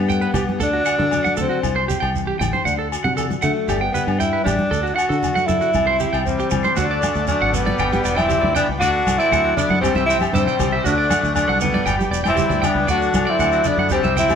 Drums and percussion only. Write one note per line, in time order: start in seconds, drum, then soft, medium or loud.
0.09 shekere medium
0.34 high conga medium
0.34 low conga medium
0.34 low agogo medium
0.34 shekere medium
0.49 high conga medium
0.61 shekere medium
0.86 low agogo medium
0.86 shekere medium
1.00 high conga medium
1.11 low conga medium
1.11 low agogo medium
1.11 shekere medium
1.25 high conga medium
1.25 shekere soft
1.37 low conga medium
1.37 shekere medium
1.63 low agogo medium
1.63 shekere medium
1.90 low conga medium
1.90 shekere medium
2.02 low agogo medium
2.15 shekere medium
2.41 high conga medium
2.41 low conga medium
2.41 low agogo medium
2.41 shekere medium
2.54 high conga medium
2.67 shekere medium
2.92 low agogo medium
2.92 shekere medium
3.05 high conga medium
3.17 low conga medium
3.17 low agogo medium
3.17 shekere medium
3.31 high conga medium
3.31 shekere soft
3.42 low conga medium
3.42 shekere medium
3.69 low agogo medium
3.69 shekere medium
3.95 low conga medium
3.95 shekere medium
4.08 low agogo medium
4.20 shekere medium
4.46 high conga medium
4.46 low conga medium
4.46 low agogo medium
4.46 shekere medium
4.59 high conga medium
4.73 shekere medium
4.87 shekere soft
4.98 low agogo medium
4.98 shekere medium
5.12 shekere soft
5.23 low conga medium
5.23 low agogo medium
5.23 shekere medium
5.36 high conga medium
5.36 shekere soft
5.49 low conga medium
5.49 shekere medium
5.61 shekere soft
5.74 high conga medium
5.74 low agogo medium
5.74 shekere medium
6.00 low conga medium
6.00 shekere medium
6.14 low agogo medium
6.14 shekere soft
6.26 shekere medium
6.39 shekere soft
6.51 high conga medium
6.51 low conga medium
6.51 low agogo medium
6.51 shekere medium
6.64 high conga medium
6.64 shekere soft
6.77 shekere medium
7.03 high conga medium
7.03 low agogo medium
7.03 shekere medium
7.15 shekere soft
7.27 low agogo medium
7.27 shekere medium
7.54 low conga medium
7.54 shekere medium
7.67 high conga medium
7.79 low agogo medium
7.79 shekere medium
7.93 high conga medium
7.93 shekere soft
8.05 shekere medium
8.18 high conga medium
8.18 low agogo medium
8.18 shekere soft
8.30 low conga medium
8.30 shekere medium
8.44 high conga medium
8.56 low conga medium
8.56 low agogo medium
8.56 shekere medium
8.82 shekere medium
9.07 high conga medium
9.07 low agogo medium
9.07 shekere medium
9.21 shekere soft
9.32 low agogo medium
9.32 shekere medium
9.57 low conga medium
9.57 shekere medium
9.70 high conga medium
9.84 low agogo medium
9.84 shekere medium
9.95 high conga medium
9.95 shekere soft
10.10 shekere medium
10.21 high conga medium
10.21 low agogo medium
10.21 shekere soft
10.34 low conga medium
10.34 shekere loud
10.46 high conga medium
10.46 shekere soft
10.60 low conga medium
10.60 low agogo medium
10.60 shekere medium
10.86 shekere medium
11.10 high conga medium
11.10 low agogo medium
11.10 shekere medium
11.24 shekere soft
11.36 low agogo medium
11.36 shekere medium
11.61 low conga medium
11.61 shekere medium
11.75 high conga medium
11.87 low agogo medium
11.87 shekere medium
12.00 high conga medium
12.00 shekere soft
12.14 shekere medium
12.26 high conga medium
12.26 low agogo medium
12.26 shekere soft
12.37 low conga medium
12.37 shekere medium
12.50 high conga medium
12.50 shekere soft
12.63 low conga medium
12.63 low agogo medium
12.63 shekere medium
12.88 shekere medium
13.02 shekere soft
13.14 high conga medium
13.14 low agogo medium
13.14 shekere medium
13.40 low agogo medium
13.40 shekere medium
13.52 shekere soft
13.64 low conga medium
13.64 shekere medium
13.90 low agogo medium
13.90 shekere medium
14.03 high conga medium
14.03 shekere soft
14.17 low conga medium
14.17 shekere medium
14.29 high conga medium
14.29 low agogo medium
14.29 shekere soft